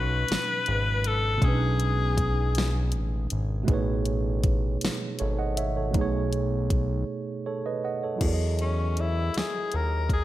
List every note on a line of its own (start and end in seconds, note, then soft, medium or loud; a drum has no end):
0.00 0.25 B1 loud
0.00 1.35 B2 medium
0.00 1.37 F#3 medium
0.00 1.38 C#4 medium
0.00 1.40 D#4 medium
0.00 1.08 B4 loud
0.00 1.41 B4 medium
0.28 0.37 G#1 soft
0.28 snare loud
0.28 closed hi-hat medium
0.66 1.39 G#1 medium
0.66 closed hi-hat medium
1.04 1.47 A4 loud
1.04 closed hi-hat medium
1.38 3.62 B2 medium
1.38 3.63 G#3 medium
1.42 2.96 B1 loud
1.42 3.65 C#4 medium
1.42 1.50 D4 soft
1.42 2.94 G#4 loud
1.42 kick loud
1.42 closed hi-hat medium
1.48 3.67 B4 medium
1.52 3.66 D#4 medium
1.80 closed hi-hat medium
2.17 kick medium
2.17 closed hi-hat medium
2.55 snare loud
2.55 closed hi-hat medium
2.92 3.27 A1 medium
2.92 closed hi-hat medium
3.30 3.65 G#1 medium
3.30 closed hi-hat medium
3.63 5.88 B2 medium
3.63 5.89 A3 medium
3.63 5.90 D#4 medium
3.68 4.78 A1 loud
3.68 5.17 G#4 medium
3.68 5.18 B4 medium
3.68 kick loud
3.68 closed hi-hat medium
3.74 5.19 C#5 medium
4.06 closed hi-hat medium
4.44 kick medium
4.44 closed hi-hat medium
4.81 snare loud
4.81 closed hi-hat medium
5.19 5.97 G#1 loud
5.19 5.38 A4 medium
5.19 5.37 C#5 medium
5.19 closed hi-hat medium
5.39 5.56 D#5 medium
5.39 5.56 F#5 medium
5.57 5.76 C#5 medium
5.57 5.75 E5 medium
5.57 closed hi-hat medium
5.77 6.12 A4 medium
5.77 6.00 C#5 medium
5.90 8.15 B2 medium
5.90 8.16 A3 medium
5.94 7.04 B1 loud
5.94 8.17 D#4 medium
5.94 kick loud
5.94 closed hi-hat medium
5.98 7.44 G#4 medium
5.98 7.45 C#5 loud
6.33 closed hi-hat medium
6.70 kick medium
6.70 closed hi-hat medium
7.46 7.64 A4 medium
7.46 7.64 C#5 medium
7.66 7.83 B4 medium
7.66 7.83 D#5 medium
7.84 8.02 D#5 medium
7.84 8.02 F#5 medium
8.03 8.39 A4 medium
8.03 8.39 C#5 medium
8.16 10.24 F#3 medium
8.16 10.24 E4 medium
8.21 9.30 E2 loud
8.21 10.24 F#4 medium
8.21 10.24 G#4 medium
8.21 kick medium
8.21 closed hi-hat medium
8.21 crash medium
8.26 10.24 A#4 medium
8.26 8.31 D5 medium
8.34 10.24 D#5 medium
8.59 9.02 C#4 medium
8.59 closed hi-hat soft
8.97 9.39 E4 medium
8.97 closed hi-hat soft
9.34 9.43 D#2 soft
9.34 9.77 G#4 medium
9.34 snare medium
9.34 closed hi-hat medium
9.72 10.24 D#2 medium
9.72 closed hi-hat soft
9.76 10.12 A#4 medium
10.09 kick medium
10.09 closed hi-hat soft
10.14 10.24 G#4 medium